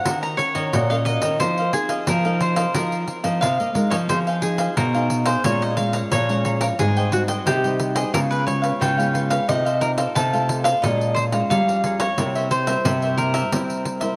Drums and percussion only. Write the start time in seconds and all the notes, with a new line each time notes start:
0.05 pandeiro
0.23 pandeiro
0.39 pandeiro
0.55 pandeiro
0.73 pandeiro
0.91 pandeiro
1.06 pandeiro
1.22 pandeiro
1.40 pandeiro
1.58 pandeiro
1.73 pandeiro
1.89 pandeiro
2.07 pandeiro
2.25 pandeiro
2.41 pandeiro
2.56 pandeiro
2.74 pandeiro
2.92 pandeiro
3.08 pandeiro
3.24 pandeiro
3.42 pandeiro
3.60 pandeiro
3.75 pandeiro
3.91 pandeiro
4.09 pandeiro
4.27 pandeiro
4.42 pandeiro
4.58 pandeiro
4.77 pandeiro
4.94 pandeiro
5.10 pandeiro
5.26 pandeiro
5.44 pandeiro
5.62 pandeiro
5.77 pandeiro
5.93 pandeiro
6.12 pandeiro
6.29 pandeiro
6.45 pandeiro
6.61 pandeiro
6.79 pandeiro
6.96 pandeiro
7.12 pandeiro
7.28 pandeiro
7.47 pandeiro
7.64 pandeiro
7.80 pandeiro
7.96 pandeiro
8.14 pandeiro
8.32 pandeiro
8.48 pandeiro
8.64 pandeiro
8.82 pandeiro
9.00 pandeiro
9.15 pandeiro
9.31 pandeiro
9.49 pandeiro
9.66 pandeiro
9.82 pandeiro
9.98 pandeiro
10.16 pandeiro
10.33 pandeiro
10.49 pandeiro
10.65 pandeiro
10.84 pandeiro
11.01 pandeiro
11.16 pandeiro
11.32 pandeiro
11.51 pandeiro
11.69 pandeiro
11.84 pandeiro
12.00 pandeiro
12.18 pandeiro
12.35 pandeiro
12.51 pandeiro
12.67 pandeiro
12.85 pandeiro
13.02 pandeiro
13.18 pandeiro
13.34 pandeiro
13.52 pandeiro
13.70 pandeiro
13.85 pandeiro
14.01 pandeiro